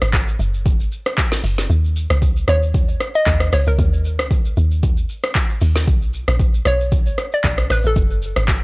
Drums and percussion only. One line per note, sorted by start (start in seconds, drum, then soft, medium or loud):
0.02 cross-stick loud
0.02 shaker medium
0.13 kick loud
0.13 clap loud
0.13 shaker medium
0.28 shaker medium
0.40 shaker loud
0.54 shaker soft
0.66 kick loud
0.66 shaker medium
0.80 shaker medium
0.92 shaker medium
1.06 cross-stick loud
1.06 shaker medium
1.18 kick medium
1.18 clap loud
1.18 shaker medium
1.32 snare medium
1.32 shaker medium
1.44 open hi-hat medium
1.44 shaker loud
1.58 snare medium
1.58 shaker medium
1.70 shaker medium
1.85 shaker soft
1.96 shaker loud
2.10 cross-stick loud
2.10 shaker medium
2.22 kick loud
2.22 shaker medium
2.36 shaker medium
2.48 cross-stick loud
2.48 shaker loud
2.62 shaker soft
2.74 kick loud
2.74 shaker medium
2.88 shaker medium
3.00 cross-stick medium
3.00 shaker medium
3.15 shaker medium
3.26 kick loud
3.26 clap loud
3.26 shaker medium
3.40 cross-stick loud
3.40 shaker medium
3.52 cross-stick loud
3.52 open hi-hat medium
3.52 shaker loud
3.67 shaker medium
3.79 kick loud
3.79 shaker medium
3.93 shaker soft
4.05 shaker loud
4.19 cross-stick loud
4.19 shaker medium
4.31 kick loud
4.31 shaker medium
4.45 shaker medium
4.57 shaker loud
4.71 shaker soft
4.83 kick loud
4.83 shaker medium
4.97 shaker medium
5.09 shaker medium
5.23 cross-stick loud
5.23 shaker medium
5.35 kick loud
5.35 clap loud
5.35 shaker medium
5.50 shaker medium
5.61 open hi-hat medium
5.61 shaker loud
5.76 snare medium
5.76 shaker medium
5.87 kick loud
5.87 shaker medium
6.02 shaker soft
6.14 shaker loud
6.28 cross-stick loud
6.28 shaker medium
6.39 kick loud
6.39 shaker medium
6.54 shaker medium
6.65 cross-stick loud
6.65 shaker loud
6.80 shaker soft
6.92 kick loud
6.92 shaker medium
7.06 shaker medium
7.18 cross-stick medium
7.18 shaker medium
7.32 shaker medium
7.44 kick loud
7.44 clap loud
7.44 shaker medium
7.58 cross-stick loud
7.58 shaker medium
7.70 cross-stick loud
7.70 open hi-hat medium
7.70 shaker medium
7.84 shaker medium
7.96 kick loud
7.96 shaker medium
8.11 shaker soft
8.22 shaker loud
8.36 cross-stick loud
8.36 shaker medium
8.48 kick loud
8.48 clap loud
8.48 shaker medium